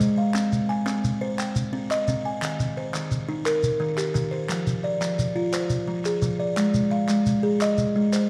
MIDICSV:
0, 0, Header, 1, 4, 480
1, 0, Start_track
1, 0, Tempo, 345423
1, 489, Time_signature, 12, 3, 24, 8
1, 11528, End_track
2, 0, Start_track
2, 0, Title_t, "Kalimba"
2, 0, Program_c, 0, 108
2, 0, Note_on_c, 0, 56, 80
2, 0, Note_on_c, 0, 72, 67
2, 246, Note_on_c, 0, 77, 69
2, 481, Note_on_c, 0, 60, 77
2, 483, Note_off_c, 0, 56, 0
2, 488, Note_off_c, 0, 72, 0
2, 727, Note_off_c, 0, 77, 0
2, 961, Note_on_c, 0, 80, 67
2, 964, Note_off_c, 0, 60, 0
2, 1195, Note_on_c, 0, 60, 86
2, 1681, Note_off_c, 0, 60, 0
2, 1683, Note_off_c, 0, 80, 0
2, 1686, Note_on_c, 0, 72, 73
2, 1923, Note_on_c, 0, 79, 69
2, 2166, Note_off_c, 0, 72, 0
2, 2402, Note_on_c, 0, 60, 85
2, 2644, Note_off_c, 0, 79, 0
2, 2651, Note_on_c, 0, 75, 70
2, 2879, Note_off_c, 0, 60, 0
2, 2895, Note_on_c, 0, 60, 79
2, 3132, Note_on_c, 0, 80, 66
2, 3364, Note_on_c, 0, 51, 82
2, 3367, Note_off_c, 0, 75, 0
2, 3370, Note_off_c, 0, 60, 0
2, 3608, Note_off_c, 0, 80, 0
2, 3843, Note_off_c, 0, 51, 0
2, 3851, Note_on_c, 0, 72, 59
2, 4089, Note_on_c, 0, 51, 80
2, 4565, Note_on_c, 0, 63, 78
2, 4566, Note_off_c, 0, 51, 0
2, 4567, Note_off_c, 0, 72, 0
2, 4802, Note_on_c, 0, 70, 72
2, 5277, Note_on_c, 0, 51, 86
2, 5285, Note_off_c, 0, 63, 0
2, 5520, Note_on_c, 0, 67, 64
2, 5523, Note_off_c, 0, 70, 0
2, 5739, Note_off_c, 0, 51, 0
2, 5756, Note_on_c, 0, 51, 84
2, 5993, Note_on_c, 0, 72, 60
2, 6239, Note_off_c, 0, 51, 0
2, 6240, Note_on_c, 0, 53, 87
2, 6242, Note_off_c, 0, 67, 0
2, 6478, Note_off_c, 0, 72, 0
2, 6722, Note_off_c, 0, 53, 0
2, 6724, Note_on_c, 0, 74, 60
2, 6959, Note_on_c, 0, 53, 74
2, 7441, Note_off_c, 0, 53, 0
2, 7442, Note_on_c, 0, 65, 74
2, 7444, Note_off_c, 0, 74, 0
2, 7689, Note_on_c, 0, 72, 70
2, 8163, Note_on_c, 0, 53, 76
2, 8164, Note_off_c, 0, 65, 0
2, 8407, Note_off_c, 0, 72, 0
2, 8414, Note_on_c, 0, 68, 65
2, 8623, Note_off_c, 0, 53, 0
2, 8640, Note_on_c, 0, 53, 73
2, 8886, Note_on_c, 0, 74, 59
2, 9123, Note_off_c, 0, 53, 0
2, 9127, Note_on_c, 0, 56, 82
2, 9130, Note_off_c, 0, 68, 0
2, 9366, Note_off_c, 0, 74, 0
2, 9605, Note_on_c, 0, 77, 68
2, 9607, Note_off_c, 0, 56, 0
2, 9856, Note_on_c, 0, 56, 82
2, 10326, Note_on_c, 0, 68, 77
2, 10327, Note_off_c, 0, 77, 0
2, 10332, Note_off_c, 0, 56, 0
2, 10585, Note_on_c, 0, 75, 74
2, 10807, Note_off_c, 0, 68, 0
2, 11056, Note_on_c, 0, 56, 78
2, 11295, Note_on_c, 0, 72, 68
2, 11298, Note_off_c, 0, 75, 0
2, 11510, Note_off_c, 0, 56, 0
2, 11528, Note_off_c, 0, 72, 0
2, 11528, End_track
3, 0, Start_track
3, 0, Title_t, "Shekere"
3, 10, Note_on_c, 9, 82, 79
3, 149, Note_off_c, 9, 82, 0
3, 494, Note_on_c, 9, 82, 60
3, 633, Note_off_c, 9, 82, 0
3, 731, Note_on_c, 9, 82, 69
3, 870, Note_off_c, 9, 82, 0
3, 1215, Note_on_c, 9, 82, 58
3, 1354, Note_off_c, 9, 82, 0
3, 1450, Note_on_c, 9, 82, 68
3, 1589, Note_off_c, 9, 82, 0
3, 1932, Note_on_c, 9, 82, 62
3, 2071, Note_off_c, 9, 82, 0
3, 2165, Note_on_c, 9, 82, 84
3, 2304, Note_off_c, 9, 82, 0
3, 2656, Note_on_c, 9, 82, 61
3, 2794, Note_off_c, 9, 82, 0
3, 2888, Note_on_c, 9, 82, 83
3, 3027, Note_off_c, 9, 82, 0
3, 3371, Note_on_c, 9, 82, 62
3, 3510, Note_off_c, 9, 82, 0
3, 3611, Note_on_c, 9, 82, 70
3, 3750, Note_off_c, 9, 82, 0
3, 4094, Note_on_c, 9, 82, 59
3, 4233, Note_off_c, 9, 82, 0
3, 4328, Note_on_c, 9, 82, 79
3, 4467, Note_off_c, 9, 82, 0
3, 4806, Note_on_c, 9, 82, 63
3, 4945, Note_off_c, 9, 82, 0
3, 5049, Note_on_c, 9, 82, 79
3, 5188, Note_off_c, 9, 82, 0
3, 5533, Note_on_c, 9, 82, 60
3, 5672, Note_off_c, 9, 82, 0
3, 5768, Note_on_c, 9, 82, 81
3, 5907, Note_off_c, 9, 82, 0
3, 6248, Note_on_c, 9, 82, 65
3, 6387, Note_off_c, 9, 82, 0
3, 6488, Note_on_c, 9, 82, 66
3, 6627, Note_off_c, 9, 82, 0
3, 6970, Note_on_c, 9, 82, 62
3, 7109, Note_off_c, 9, 82, 0
3, 7211, Note_on_c, 9, 82, 84
3, 7350, Note_off_c, 9, 82, 0
3, 7684, Note_on_c, 9, 82, 67
3, 7823, Note_off_c, 9, 82, 0
3, 7918, Note_on_c, 9, 82, 82
3, 8057, Note_off_c, 9, 82, 0
3, 8408, Note_on_c, 9, 82, 66
3, 8547, Note_off_c, 9, 82, 0
3, 8645, Note_on_c, 9, 82, 84
3, 8784, Note_off_c, 9, 82, 0
3, 9131, Note_on_c, 9, 82, 71
3, 9270, Note_off_c, 9, 82, 0
3, 9368, Note_on_c, 9, 82, 78
3, 9507, Note_off_c, 9, 82, 0
3, 9850, Note_on_c, 9, 82, 61
3, 9989, Note_off_c, 9, 82, 0
3, 10092, Note_on_c, 9, 82, 81
3, 10231, Note_off_c, 9, 82, 0
3, 10570, Note_on_c, 9, 82, 69
3, 10709, Note_off_c, 9, 82, 0
3, 10809, Note_on_c, 9, 82, 77
3, 10948, Note_off_c, 9, 82, 0
3, 11294, Note_on_c, 9, 82, 63
3, 11433, Note_off_c, 9, 82, 0
3, 11528, End_track
4, 0, Start_track
4, 0, Title_t, "Drums"
4, 477, Note_on_c, 9, 39, 56
4, 616, Note_off_c, 9, 39, 0
4, 974, Note_on_c, 9, 39, 18
4, 1113, Note_off_c, 9, 39, 0
4, 1205, Note_on_c, 9, 39, 47
4, 1344, Note_off_c, 9, 39, 0
4, 1933, Note_on_c, 9, 39, 52
4, 2072, Note_off_c, 9, 39, 0
4, 2653, Note_on_c, 9, 39, 47
4, 2792, Note_off_c, 9, 39, 0
4, 3365, Note_on_c, 9, 39, 65
4, 3504, Note_off_c, 9, 39, 0
4, 3854, Note_on_c, 9, 39, 18
4, 3993, Note_off_c, 9, 39, 0
4, 4087, Note_on_c, 9, 39, 47
4, 4226, Note_off_c, 9, 39, 0
4, 4806, Note_on_c, 9, 39, 54
4, 4945, Note_off_c, 9, 39, 0
4, 5525, Note_on_c, 9, 39, 40
4, 5664, Note_off_c, 9, 39, 0
4, 6007, Note_on_c, 9, 39, 16
4, 6146, Note_off_c, 9, 39, 0
4, 6244, Note_on_c, 9, 39, 55
4, 6383, Note_off_c, 9, 39, 0
4, 6729, Note_on_c, 9, 39, 16
4, 6868, Note_off_c, 9, 39, 0
4, 6974, Note_on_c, 9, 39, 39
4, 7113, Note_off_c, 9, 39, 0
4, 7692, Note_on_c, 9, 39, 53
4, 7831, Note_off_c, 9, 39, 0
4, 8409, Note_on_c, 9, 39, 39
4, 8548, Note_off_c, 9, 39, 0
4, 9133, Note_on_c, 9, 39, 54
4, 9272, Note_off_c, 9, 39, 0
4, 9608, Note_on_c, 9, 39, 17
4, 9747, Note_off_c, 9, 39, 0
4, 9846, Note_on_c, 9, 39, 42
4, 9985, Note_off_c, 9, 39, 0
4, 10575, Note_on_c, 9, 39, 49
4, 10714, Note_off_c, 9, 39, 0
4, 11303, Note_on_c, 9, 39, 44
4, 11442, Note_off_c, 9, 39, 0
4, 11528, End_track
0, 0, End_of_file